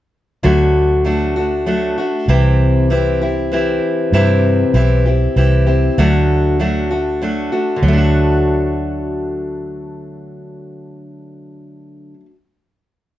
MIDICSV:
0, 0, Header, 1, 3, 480
1, 0, Start_track
1, 0, Tempo, 614125
1, 350, Time_signature, 3, 2, 24, 8
1, 10302, End_track
2, 0, Start_track
2, 0, Title_t, "Steel-string acoustic guitar"
2, 0, Program_c, 0, 25
2, 337, Note_on_c, 0, 50, 69
2, 340, Note_on_c, 0, 54, 70
2, 343, Note_on_c, 0, 62, 73
2, 344, Note_on_c, 0, 57, 70
2, 351, Note_on_c, 0, 66, 80
2, 808, Note_off_c, 0, 54, 0
2, 815, Note_off_c, 0, 57, 0
2, 817, Note_on_c, 0, 54, 59
2, 821, Note_off_c, 0, 62, 0
2, 823, Note_off_c, 0, 50, 0
2, 824, Note_on_c, 0, 57, 59
2, 825, Note_off_c, 0, 66, 0
2, 830, Note_on_c, 0, 62, 61
2, 835, Note_on_c, 0, 66, 67
2, 1053, Note_off_c, 0, 66, 0
2, 1062, Note_on_c, 0, 66, 47
2, 1063, Note_off_c, 0, 54, 0
2, 1064, Note_off_c, 0, 62, 0
2, 1067, Note_off_c, 0, 57, 0
2, 1073, Note_on_c, 0, 62, 42
2, 1081, Note_on_c, 0, 57, 38
2, 1294, Note_off_c, 0, 57, 0
2, 1299, Note_off_c, 0, 62, 0
2, 1300, Note_on_c, 0, 54, 54
2, 1304, Note_on_c, 0, 57, 57
2, 1306, Note_off_c, 0, 66, 0
2, 1309, Note_on_c, 0, 62, 55
2, 1315, Note_on_c, 0, 66, 59
2, 1536, Note_off_c, 0, 66, 0
2, 1545, Note_off_c, 0, 54, 0
2, 1545, Note_on_c, 0, 66, 46
2, 1547, Note_off_c, 0, 57, 0
2, 1547, Note_off_c, 0, 62, 0
2, 1557, Note_on_c, 0, 62, 38
2, 1559, Note_on_c, 0, 57, 40
2, 1785, Note_on_c, 0, 48, 75
2, 1786, Note_off_c, 0, 57, 0
2, 1787, Note_off_c, 0, 66, 0
2, 1789, Note_on_c, 0, 52, 72
2, 1789, Note_on_c, 0, 60, 70
2, 1790, Note_off_c, 0, 62, 0
2, 1793, Note_on_c, 0, 64, 74
2, 1797, Note_on_c, 0, 67, 76
2, 2258, Note_off_c, 0, 52, 0
2, 2261, Note_off_c, 0, 60, 0
2, 2265, Note_off_c, 0, 64, 0
2, 2267, Note_on_c, 0, 52, 59
2, 2268, Note_off_c, 0, 48, 0
2, 2270, Note_on_c, 0, 60, 65
2, 2271, Note_off_c, 0, 67, 0
2, 2274, Note_on_c, 0, 64, 64
2, 2280, Note_on_c, 0, 67, 70
2, 2502, Note_off_c, 0, 67, 0
2, 2509, Note_off_c, 0, 52, 0
2, 2510, Note_off_c, 0, 60, 0
2, 2512, Note_off_c, 0, 64, 0
2, 2512, Note_on_c, 0, 67, 42
2, 2521, Note_on_c, 0, 64, 38
2, 2525, Note_on_c, 0, 60, 34
2, 2748, Note_off_c, 0, 60, 0
2, 2748, Note_on_c, 0, 52, 57
2, 2751, Note_off_c, 0, 64, 0
2, 2751, Note_off_c, 0, 67, 0
2, 2757, Note_on_c, 0, 60, 62
2, 2760, Note_on_c, 0, 64, 59
2, 2765, Note_on_c, 0, 67, 60
2, 3224, Note_off_c, 0, 52, 0
2, 3227, Note_off_c, 0, 60, 0
2, 3230, Note_off_c, 0, 64, 0
2, 3231, Note_off_c, 0, 67, 0
2, 3231, Note_on_c, 0, 48, 68
2, 3233, Note_on_c, 0, 52, 80
2, 3237, Note_on_c, 0, 60, 80
2, 3239, Note_on_c, 0, 64, 76
2, 3241, Note_on_c, 0, 67, 74
2, 3696, Note_off_c, 0, 52, 0
2, 3701, Note_off_c, 0, 60, 0
2, 3705, Note_on_c, 0, 52, 64
2, 3709, Note_off_c, 0, 64, 0
2, 3710, Note_off_c, 0, 67, 0
2, 3710, Note_on_c, 0, 60, 66
2, 3711, Note_off_c, 0, 48, 0
2, 3718, Note_on_c, 0, 64, 67
2, 3719, Note_on_c, 0, 67, 66
2, 3944, Note_off_c, 0, 67, 0
2, 3949, Note_off_c, 0, 52, 0
2, 3951, Note_off_c, 0, 60, 0
2, 3953, Note_on_c, 0, 67, 50
2, 3955, Note_off_c, 0, 64, 0
2, 3963, Note_on_c, 0, 64, 42
2, 3971, Note_on_c, 0, 60, 40
2, 4186, Note_off_c, 0, 60, 0
2, 4193, Note_off_c, 0, 67, 0
2, 4193, Note_on_c, 0, 52, 53
2, 4195, Note_off_c, 0, 64, 0
2, 4195, Note_on_c, 0, 60, 58
2, 4204, Note_on_c, 0, 64, 62
2, 4206, Note_on_c, 0, 67, 64
2, 4418, Note_off_c, 0, 67, 0
2, 4422, Note_off_c, 0, 64, 0
2, 4427, Note_on_c, 0, 67, 48
2, 4431, Note_on_c, 0, 64, 40
2, 4432, Note_off_c, 0, 60, 0
2, 4433, Note_off_c, 0, 52, 0
2, 4442, Note_on_c, 0, 60, 41
2, 4670, Note_off_c, 0, 67, 0
2, 4672, Note_off_c, 0, 64, 0
2, 4674, Note_on_c, 0, 50, 74
2, 4675, Note_off_c, 0, 60, 0
2, 4678, Note_on_c, 0, 57, 74
2, 4681, Note_on_c, 0, 54, 67
2, 4683, Note_on_c, 0, 62, 77
2, 4686, Note_on_c, 0, 66, 78
2, 5145, Note_off_c, 0, 54, 0
2, 5154, Note_off_c, 0, 50, 0
2, 5154, Note_off_c, 0, 57, 0
2, 5155, Note_on_c, 0, 54, 57
2, 5156, Note_off_c, 0, 62, 0
2, 5160, Note_off_c, 0, 66, 0
2, 5163, Note_on_c, 0, 57, 60
2, 5165, Note_on_c, 0, 62, 70
2, 5173, Note_on_c, 0, 66, 68
2, 5388, Note_off_c, 0, 66, 0
2, 5394, Note_off_c, 0, 54, 0
2, 5397, Note_off_c, 0, 62, 0
2, 5398, Note_on_c, 0, 66, 49
2, 5399, Note_off_c, 0, 57, 0
2, 5406, Note_on_c, 0, 62, 37
2, 5414, Note_on_c, 0, 57, 34
2, 5636, Note_off_c, 0, 66, 0
2, 5637, Note_off_c, 0, 57, 0
2, 5639, Note_off_c, 0, 62, 0
2, 5639, Note_on_c, 0, 54, 49
2, 5646, Note_on_c, 0, 57, 61
2, 5648, Note_on_c, 0, 62, 59
2, 5657, Note_on_c, 0, 66, 63
2, 5867, Note_off_c, 0, 66, 0
2, 5873, Note_off_c, 0, 62, 0
2, 5877, Note_off_c, 0, 54, 0
2, 5877, Note_on_c, 0, 66, 41
2, 5879, Note_off_c, 0, 57, 0
2, 5882, Note_on_c, 0, 62, 42
2, 5888, Note_on_c, 0, 57, 35
2, 6068, Note_on_c, 0, 50, 64
2, 6116, Note_off_c, 0, 66, 0
2, 6116, Note_on_c, 0, 54, 71
2, 6119, Note_off_c, 0, 62, 0
2, 6122, Note_off_c, 0, 57, 0
2, 6160, Note_on_c, 0, 57, 79
2, 6198, Note_on_c, 0, 62, 79
2, 6235, Note_on_c, 0, 66, 75
2, 9486, Note_off_c, 0, 50, 0
2, 9534, Note_off_c, 0, 54, 0
2, 9578, Note_off_c, 0, 57, 0
2, 9616, Note_off_c, 0, 62, 0
2, 9653, Note_off_c, 0, 66, 0
2, 10302, End_track
3, 0, Start_track
3, 0, Title_t, "Fingered electric bass"
3, 0, Program_c, 1, 33
3, 349, Note_on_c, 1, 38, 83
3, 1524, Note_off_c, 1, 38, 0
3, 1781, Note_on_c, 1, 36, 80
3, 2960, Note_off_c, 1, 36, 0
3, 3223, Note_on_c, 1, 43, 80
3, 3618, Note_off_c, 1, 43, 0
3, 3703, Note_on_c, 1, 35, 76
3, 4115, Note_off_c, 1, 35, 0
3, 4190, Note_on_c, 1, 36, 76
3, 4600, Note_off_c, 1, 36, 0
3, 4673, Note_on_c, 1, 38, 83
3, 5849, Note_off_c, 1, 38, 0
3, 6116, Note_on_c, 1, 38, 84
3, 9502, Note_off_c, 1, 38, 0
3, 10302, End_track
0, 0, End_of_file